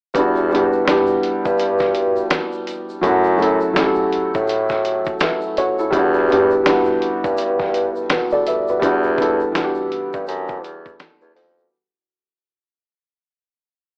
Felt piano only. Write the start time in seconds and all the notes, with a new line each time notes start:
0.13 G3 B3 D4
0.18 E4 F#4
0.49 G3 B3 D4
0.54 E4 G4
0.85 G3 B3 D4
0.89 E4 G4
3.01 F#3 A3 C#4
3.06 E4 F#4
3.38 F#3 A3 C#4
3.42 E4 A4
3.74 F#3 A3 C#4
3.78 E4 G4
3.86 A4
5.22 B4 E5
5.58 F#4 C#5
5.79 E4 A4
5.91 G3 B3 D4
5.95 E4 F#4
6.28 G3 B3 D4
6.32 E4 G4
6.64 G3 B3 D4
6.68 E4 F#4
8.11 F#4 B4
8.32 A4 D5
8.47 B4 E5
8.69 F#4 B4
8.79 G3 B3 D4
8.84 E4 F#4
9.16 G3 B3 D4
9.20 E4 A4
9.52 E3 B3 D4
9.57 E4 F#4
9.64 G4